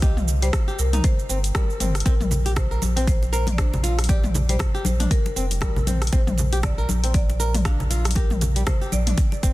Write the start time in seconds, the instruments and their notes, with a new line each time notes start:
Already playing: sub bass C2
0.02 nylon-string guitar G4, marimba D#5, kick, closed hi-hat, cabasa
0.17 mid tom, cabasa
0.28 cabasa
0.42 nylon-string guitar G3, marimba C5, closed hi-hat, cabasa
0.53 kick, cross-stick, closed hi-hat, cabasa
0.68 nylon-string guitar G4, cabasa
0.79 sub bass C2, marimba A#4, cabasa
0.93 nylon-string guitar D#4, closed hi-hat, mid tom, cabasa
1.04 marimba C5, kick, closed hi-hat, cabasa
1.19 cabasa
1.29 sub bass G1, nylon-string guitar C4, cabasa
1.44 closed hi-hat, cabasa
1.55 nylon-string guitar G3, marimba A#4, kick, cross-stick, closed hi-hat, cabasa
1.70 cabasa
1.80 sub bass G1, nylon-string guitar C4, closed hi-hat, mid tom, cabasa
1.95 cross-stick, closed hi-hat, cabasa
2.00 closed hi-hat
2.06 sub bass A#1, nylon-string guitar C4, marimba A#4, kick, closed hi-hat, muted conga, cabasa
2.20 mid tom, high conga, cabasa
2.31 muted conga, low conga, cabasa
2.46 nylon-string guitar G4, closed hi-hat, cabasa
2.56 marimba C5, kick, cross-stick, closed hi-hat, muted conga, low conga, cabasa
2.71 nylon-string guitar A#4, cabasa
2.82 sub bass A#1, high conga, cabasa
2.97 nylon-string guitar C4, closed hi-hat, muted conga, cabasa
3.07 marimba C5, kick, closed hi-hat, cabasa
3.23 muted conga, cabasa
3.33 nylon-string guitar A#4, marimba C5, cabasa
3.47 closed hi-hat, mid tom, muted conga, high conga, cabasa
3.52 marimba D5
3.58 nylon-string guitar D4, marimba C5, kick, cross-stick, closed hi-hat, cabasa
3.74 low conga, cabasa
3.84 nylon-string guitar F4, closed hi-hat, muted conga, cabasa
3.98 cross-stick, closed hi-hat, high conga, cabasa
4.04 closed hi-hat
4.09 nylon-string guitar G4, marimba D5, kick, closed hi-hat, muted conga, cabasa
4.23 mid tom, high conga, cabasa
4.34 muted conga, low conga, cabasa
4.49 nylon-string guitar G3, marimba C5, closed hi-hat, cabasa
4.59 kick, cross-stick, closed hi-hat, muted conga, low conga, cabasa
4.75 nylon-string guitar G4, cabasa
4.85 sub bass A#1, marimba C5, high conga, cabasa
5.00 nylon-string guitar D4, closed hi-hat, mid tom, muted conga, cabasa
5.11 marimba A#4, kick, closed hi-hat, high conga, cabasa
5.26 muted conga, cabasa
5.36 sub bass F1, nylon-string guitar C4, cabasa
5.51 closed hi-hat, muted conga, cabasa
5.61 sub bass A#1, nylon-string guitar G3, marimba A#4, kick, cross-stick, closed hi-hat, high conga, cabasa
5.76 low conga, cabasa
5.87 nylon-string guitar C4, closed hi-hat, mid tom, muted conga, high conga, cabasa
6.02 cross-stick, closed hi-hat, cabasa
6.07 closed hi-hat
6.12 sub bass A#1, nylon-string guitar C4, marimba C5, kick, closed hi-hat, muted conga, cabasa
6.27 mid tom, high conga, cabasa
6.38 muted conga, low conga, cabasa
6.53 nylon-string guitar G4, closed hi-hat, cabasa
6.63 marimba D5, kick, cross-stick, closed hi-hat, muted conga, low conga, cabasa
6.78 nylon-string guitar A#4, cabasa
6.89 sub bass A#1, high conga, cabasa
7.04 nylon-string guitar C4, closed hi-hat, muted conga, cabasa
7.14 marimba D5, kick, closed hi-hat, cabasa
7.30 muted conga, cabasa
7.40 nylon-string guitar A#4, cabasa
7.54 closed hi-hat, mid tom, muted conga, high conga, cabasa
7.65 nylon-string guitar D4, marimba F5, kick, cross-stick, closed hi-hat, cabasa
7.80 low conga, cabasa
7.91 nylon-string guitar F4, closed hi-hat, muted conga, cabasa
8.05 cross-stick, closed hi-hat, high conga, cabasa
8.11 closed hi-hat
8.15 nylon-string guitar G4, marimba A#4, kick, closed hi-hat, muted conga, cabasa
8.30 mid tom, high conga, cabasa
8.41 closed hi-hat, muted conga, low conga, cabasa
8.56 nylon-string guitar G3, closed hi-hat, cabasa
8.67 marimba C5, kick, cross-stick, closed hi-hat, muted conga, low conga, cabasa
8.81 nylon-string guitar G4, cabasa
8.92 sub bass A#1, marimba D5, high conga, cabasa
9.07 nylon-string guitar D4, closed hi-hat, mid tom, muted conga, cabasa
9.18 kick, closed hi-hat, high conga, cabasa
9.32 muted conga, cabasa
9.43 sub bass F1, nylon-string guitar C4, kick, closed hi-hat, cabasa